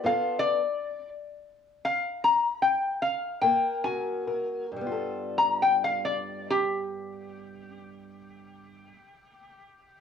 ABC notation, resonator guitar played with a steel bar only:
X:1
M:12/8
L:1/16
Q:3/8=45
K:Gmix
V:1 name="Resonator guitar played with a steel bar"
f2 d4 z4 f2 _b2 g2 f2 g2 _a4 | z3 _b g f d2 G16 |]